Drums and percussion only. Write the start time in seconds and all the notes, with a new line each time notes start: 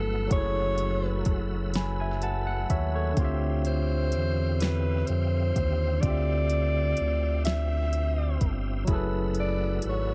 0.31 kick, closed hi-hat
0.78 closed hi-hat
1.25 kick, closed hi-hat
1.74 snare, closed hi-hat
2.22 closed hi-hat
2.70 kick, closed hi-hat
3.17 kick, closed hi-hat
3.65 closed hi-hat
4.12 closed hi-hat
4.60 snare, closed hi-hat
5.07 closed hi-hat
5.56 kick, closed hi-hat
6.03 kick, closed hi-hat
6.50 closed hi-hat
6.97 closed hi-hat
7.45 snare, closed hi-hat
7.93 closed hi-hat
8.41 kick, closed hi-hat
8.87 kick, closed hi-hat
9.35 closed hi-hat
9.82 closed hi-hat